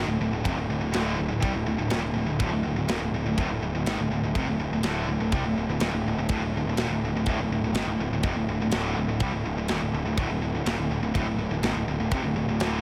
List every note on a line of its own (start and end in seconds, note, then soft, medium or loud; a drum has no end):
0.06 0.19 D1 medium
0.06 0.21 D2 medium
0.06 0.22 A2 medium
0.19 0.30 D1 medium
0.19 0.34 D2 medium
0.19 0.34 A2 medium
0.31 0.43 D1 medium
0.35 0.46 D2 medium
0.35 0.46 A2 medium
0.45 0.55 F1 loud
0.45 0.58 F2 medium
0.45 0.58 C3 loud
0.45 kick loud
0.45 ride bell medium
0.56 0.68 D1 medium
0.56 0.70 D2 medium
0.56 0.71 A2 medium
0.69 0.80 D1 medium
0.69 0.82 D2 medium
0.69 0.82 A2 medium
0.81 0.93 D1 medium
0.81 0.93 D2 medium
0.81 0.94 A2 medium
0.94 1.17 D1 medium
0.94 1.18 D2 medium
0.94 1.18 A2 loud
0.94 1.19 D3 loud
0.94 snare loud
0.94 ride bell medium
1.16 1.30 D1 medium
1.16 1.31 D2 medium
1.16 1.28 A2 medium
1.21 1.31 A2 medium
1.28 1.41 D1 medium
1.28 1.40 D2 medium
1.28 1.44 A2 medium
1.33 1.43 D2 medium
1.42 1.54 C2 medium
1.42 1.55 C3 loud
1.42 1.55 G3 loud
1.42 kick loud
1.42 ride bell medium
1.54 1.66 D1 medium
1.54 1.66 D2 medium
1.54 1.66 A2 medium
1.67 1.78 D1 medium
1.67 1.79 D2 medium
1.67 1.80 A2 medium
1.78 1.90 D1 medium
1.78 1.92 D2 medium
1.78 1.93 A2 medium
1.90 2.02 D#1 loud
1.90 2.04 D#2 medium
1.90 2.04 A#2 loud
1.90 snare loud
1.90 ride bell medium
2.02 2.14 D1 medium
2.02 2.13 D2 medium
2.02 2.12 A2 medium
2.06 2.17 D2 medium
2.06 2.17 A2 medium
2.14 2.26 D1 medium
2.14 2.25 D2 medium
2.14 2.26 A2 medium
2.18 2.28 D2 medium
2.18 2.28 A2 medium
2.27 2.38 D1 medium
2.27 2.41 D2 medium
2.27 2.41 A2 medium
2.39 2.50 D1 medium
2.39 2.53 D2 loud
2.39 2.51 A2 medium
2.39 kick loud
2.39 ride bell medium
2.44 2.53 A2 loud
2.51 2.63 D1 medium
2.55 2.66 D2 medium
2.55 2.66 A2 medium
2.63 2.75 D1 medium
2.63 2.78 D2 medium
2.63 2.75 A2 medium
2.67 2.78 A2 medium
2.76 2.86 D1 medium
2.76 2.88 D2 medium
2.76 2.89 A2 medium
2.80 2.91 D2 medium
2.80 2.91 A2 medium
2.87 2.99 D#1 medium
2.87 snare loud
2.87 ride bell medium
2.92 3.02 D#2 loud
2.92 3.02 A#2 loud
2.99 3.11 D1 medium
3.05 3.15 D2 medium
3.05 3.15 A2 medium
3.12 3.23 D1 medium
3.16 3.27 D2 medium
3.16 3.27 A2 medium
3.24 3.36 D1 medium
3.29 3.39 D2 medium
3.29 3.39 A2 medium
3.37 3.47 D1 loud
3.37 3.50 D2 loud
3.37 kick medium
3.37 ride bell medium
3.42 3.51 A2 loud
3.48 3.60 D1 medium
3.52 3.63 D2 medium
3.52 3.64 A2 medium
3.61 3.73 D1 medium
3.61 3.74 D2 medium
3.65 3.75 A2 medium
3.73 3.85 D1 medium
3.73 3.87 D2 medium
3.73 3.87 A2 medium
3.85 3.97 G#1 loud
3.85 3.99 G#2 loud
3.85 3.99 D#3 loud
3.85 snare loud
3.85 ride bell medium
3.98 4.09 D1 medium
3.98 4.12 D2 medium
3.98 4.12 A2 medium
4.10 4.21 D1 medium
4.10 4.24 D2 medium
4.10 4.24 A2 medium
4.22 4.34 D1 medium
4.22 4.36 D2 medium
4.22 4.37 A2 medium
4.35 4.46 F1 medium
4.35 4.48 F2 loud
4.35 4.48 C3 loud
4.35 kick loud
4.35 ride bell medium
4.47 4.58 D1 medium
4.47 4.59 D2 medium
4.47 4.59 A2 medium
4.58 4.69 D1 medium
4.58 4.72 D2 medium
4.58 4.72 A2 medium
4.70 4.82 D1 medium
4.70 4.84 D2 medium
4.70 4.85 A2 medium
4.83 5.06 D1 medium
4.83 5.08 D2 medium
4.83 5.09 A2 loud
4.83 5.09 D3 medium
4.83 snare loud
4.83 ride bell medium
5.06 5.19 D1 medium
5.06 5.20 D2 medium
5.06 5.21 A2 medium
5.19 5.31 D1 medium
5.19 5.33 D2 medium
5.19 5.33 A2 medium
5.32 5.42 C2 loud
5.32 5.44 C3 loud
5.32 5.45 G3 loud
5.32 kick loud
5.32 ride bell medium
5.43 5.55 D1 medium
5.43 5.57 D2 medium
5.43 5.58 A2 medium
5.56 5.67 D1 medium
5.56 5.68 D2 medium
5.56 5.68 A2 medium
5.67 5.79 D1 medium
5.67 5.80 D2 medium
5.67 5.81 A2 medium
5.79 5.92 D#1 loud
5.79 5.92 D#2 medium
5.79 5.93 A#2 loud
5.79 snare loud
5.79 ride bell medium
5.92 6.04 D1 medium
5.92 6.05 D2 medium
5.92 6.06 A2 medium
6.05 6.16 D1 medium
6.05 6.17 D2 medium
6.05 6.18 A2 medium
6.17 6.29 D1 medium
6.17 6.29 D2 medium
6.17 6.30 A2 medium
6.29 6.39 D1 loud
6.29 6.42 D2 loud
6.29 6.42 A2 loud
6.29 kick loud
6.29 ride bell medium
6.39 6.51 D1 medium
6.39 6.53 D2 medium
6.44 6.54 A2 medium
6.52 6.63 D1 medium
6.52 6.66 D2 medium
6.52 6.66 A2 medium
6.64 6.76 D1 medium
6.64 6.78 D2 medium
6.64 6.79 A2 medium
6.76 6.87 D#1 loud
6.76 6.90 D#2 medium
6.76 6.90 A#2 loud
6.76 snare loud
6.76 ride bell medium
6.88 7.00 D1 medium
6.88 7.03 D2 medium
6.88 7.03 A2 medium
7.02 7.13 D1 medium
7.02 7.15 D2 medium
7.02 7.16 A2 medium
7.13 7.25 D1 medium
7.13 7.26 D2 medium
7.13 7.28 A2 medium
7.26 7.37 D1 medium
7.26 7.38 D2 loud
7.26 7.39 A2 loud
7.26 kick medium
7.26 ride bell medium
7.38 7.49 D1 medium
7.38 7.51 D2 medium
7.38 7.52 A2 medium
7.49 7.61 D1 medium
7.53 7.64 D2 medium
7.53 7.64 A2 medium
7.61 7.72 D1 medium
7.61 7.76 D2 medium
7.66 7.77 A2 medium
7.73 7.85 G#1 loud
7.73 snare loud
7.73 ride bell medium
7.77 7.88 G#2 medium
7.77 7.89 D#3 loud
7.85 7.98 D1 medium
7.91 8.01 D2 medium
7.91 8.01 A2 medium
7.99 8.10 D1 medium
7.99 8.13 D2 medium
7.99 8.13 A2 medium
8.10 8.22 D1 medium
8.10 8.25 D2 medium
8.15 8.25 A2 medium
8.23 8.34 F1 loud
8.23 8.36 F2 medium
8.23 8.37 C3 loud
8.23 kick loud
8.23 ride bell medium
8.34 8.46 D1 medium
8.34 8.48 D2 medium
8.34 8.49 A2 medium
8.48 8.59 D1 medium
8.48 8.60 D2 medium
8.48 8.61 A2 medium
8.60 8.71 D1 medium
8.60 8.71 D2 medium
8.60 8.72 A2 medium
8.71 8.95 D1 loud
8.71 8.96 D2 loud
8.71 8.97 A2 medium
8.71 8.97 D3 medium
8.71 snare loud
8.71 ride bell medium
8.97 9.07 D1 medium
8.97 9.07 D2 medium
8.97 9.08 A2 medium
9.08 9.20 D1 medium
9.08 9.21 D2 medium
9.08 9.21 A2 medium
9.20 9.31 C2 loud
9.20 9.33 C3 loud
9.20 9.33 G3 loud
9.20 kick medium
9.20 ride bell medium
9.32 9.44 D1 medium
9.32 9.43 D2 medium
9.32 9.44 A2 medium
9.45 9.56 D1 medium
9.45 9.56 D2 medium
9.45 9.56 A2 medium
9.56 9.68 D1 medium
9.56 9.68 D2 medium
9.56 9.69 A2 medium
9.68 9.81 D#1 loud
9.68 9.80 D#2 medium
9.68 9.81 A#2 loud
9.68 snare loud
9.68 ride bell medium
9.81 9.91 D1 medium
9.81 9.92 D2 medium
9.81 9.93 A2 medium
9.92 10.04 D1 medium
9.92 10.04 D2 medium
9.92 10.05 A2 medium
10.04 10.16 D1 medium
10.04 10.17 D2 medium
10.04 10.18 A2 medium
10.17 10.28 D1 medium
10.17 10.28 D2 loud
10.17 10.28 A2 loud
10.17 kick loud
10.17 ride bell medium
10.29 10.41 D1 medium
10.29 10.40 D2 medium
10.29 10.41 A2 medium
10.41 10.53 D1 medium
10.41 10.54 D2 medium
10.41 10.54 A2 medium
10.53 10.64 D1 medium
10.53 10.65 D2 medium
10.53 10.66 A2 medium
10.65 10.77 D#1 loud
10.65 10.77 D#2 loud
10.65 10.78 A#2 loud
10.65 snare loud
10.65 ride bell medium
10.77 10.89 D1 medium
10.77 10.90 D2 medium
10.77 10.90 A2 medium
10.90 11.00 D1 medium
10.90 11.03 D2 medium
10.90 11.03 A2 medium
11.01 11.13 D1 medium
11.01 11.13 D2 medium
11.01 11.14 A2 medium
11.14 11.24 D1 loud
11.14 11.26 D2 loud
11.14 11.26 A2 loud
11.14 kick loud
11.14 ride bell medium
11.24 11.35 D1 medium
11.24 11.39 D2 medium
11.24 11.40 A2 medium
11.36 11.48 D1 medium
11.41 11.52 D2 medium
11.41 11.52 A2 medium
11.49 11.61 D1 medium
11.55 11.65 D2 medium
11.55 11.65 A2 medium
11.62 11.74 G#1 loud
11.62 snare loud
11.62 ride bell medium
11.67 11.76 G#2 loud
11.67 11.77 D#3 medium
11.75 11.85 D1 medium
11.75 11.87 D2 medium
11.79 11.88 A2 medium
11.86 11.98 D1 medium
11.86 11.99 D2 medium
11.86 12.00 A2 medium
11.99 12.10 D1 medium
11.99 12.12 D2 medium
11.99 12.12 A2 medium
12.11 12.22 F1 loud
12.11 12.24 F2 medium
12.11 12.24 C3 loud
12.11 kick loud
12.11 ride bell medium
12.23 12.35 D1 medium
12.23 12.36 D2 medium
12.23 12.36 A2 medium
12.36 12.47 D1 medium
12.36 12.48 D2 medium
12.36 12.49 A2 medium
12.48 12.59 D1 medium
12.48 12.60 D2 medium
12.48 12.60 A2 medium
12.60 12.81 D1 medium
12.60 12.81 D2 medium
12.60 12.81 A2 loud
12.60 12.81 D3 loud
12.60 snare loud
12.60 ride bell medium